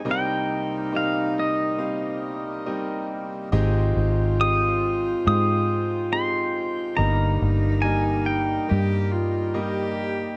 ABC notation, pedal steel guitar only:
X:1
M:4/4
L:1/8
Q:1/4=69
K:Eb
V:1 name="Pedal steel guitar"
g2 f e4 z | z2 e'2 e'2 c'2 | b2 a g4 z |]